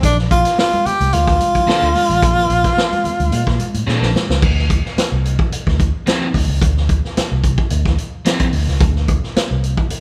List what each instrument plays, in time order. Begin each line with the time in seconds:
0.03 fingered electric bass A#1, tenor saxophone D4, kick, closed hi-hat, muted conga, low conga
0.19 snare
0.31 fingered electric bass A#1, tenor saxophone F4, kick, closed hi-hat
0.45 snare, closed hi-hat
0.58 tenor saxophone F4, snare, muted conga
0.73 closed hi-hat, high conga
0.86 tenor saxophone G4, muted fingered electric bass stroke, closed hi-hat, muted conga, low conga
1.00 fingered electric bass C2, closed hi-hat, high conga
1.13 fingered electric bass D2, tenor saxophone F4, closed hi-hat, muted conga
1.27 kick, snare, closed hi-hat
1.40 closed hi-hat, high conga
1.55 kick, closed hi-hat
1.67 overdriven electric guitar A#3 D4 A4, muted fingered electric bass stroke, snare
1.82 fingered electric bass D2, closed hi-hat
1.95 open hi-hat, muted conga, high conga, low conga
2.10 fingered electric bass A1, closed hi-hat
2.22 fingered electric bass A#1, kick, closed hi-hat, low conga
2.38 snare
2.50 fingered electric bass A#1, closed hi-hat
2.64 kick, snare, closed hi-hat
2.77 snare, muted conga
2.92 closed hi-hat, high conga
3.04 muted fingered electric bass stroke, closed hi-hat, muted conga, low conga
3.20 fingered electric bass D2, closed hi-hat, high conga
3.32 fingered electric bass A#2, closed hi-hat, muted conga
3.47 fingered electric bass A#2, kick, snare
3.60 closed hi-hat, muted conga, high conga
3.74 fingered electric bass A2, closed hi-hat
3.87 fingered electric bass A#2, overdriven electric guitar A#3 D4 A4, snare, muted conga
4.01 fingered electric bass A#1, snare
4.15 snare, high conga, low conga
4.29 fingered electric bass C#2, snare
4.42 fingered electric bass D2, kick, crash
4.58 snare
4.70 kick, closed hi-hat
4.85 snare
4.97 muted fingered electric bass stroke, snare, closed hi-hat
5.12 fingered electric bass C2
5.25 closed hi-hat
5.39 kick
5.52 muted fingered electric bass stroke, closed hi-hat
5.67 fingered electric bass D2, kick, snare
5.80 kick, closed hi-hat
6.06 overdriven electric guitar F3 C4 E4, snare, closed hi-hat
6.34 fingered electric bass D2, kick, open hi-hat
6.48 fingered electric bass C#2
6.62 fingered electric bass D2, kick, closed hi-hat
6.77 snare
6.89 kick, closed hi-hat
7.05 snare
7.17 muted fingered electric bass stroke, snare, closed hi-hat
7.32 fingered electric bass C2
7.44 kick, closed hi-hat
7.58 kick
7.70 fingered electric bass D2, closed hi-hat
7.86 kick, snare
7.98 closed hi-hat
8.25 overdriven electric guitar F3 C4 E4, snare, closed hi-hat
8.40 kick, closed hi-hat
8.53 fingered electric bass D2, open hi-hat
8.68 fingered electric bass C#2, snare
8.80 fingered electric bass D2, kick, closed hi-hat
8.96 snare
9.08 kick, closed hi-hat
9.24 snare
9.36 muted fingered electric bass stroke, snare, closed hi-hat
9.51 fingered electric bass C2
9.64 closed hi-hat
9.77 kick
9.90 muted fingered electric bass stroke, closed hi-hat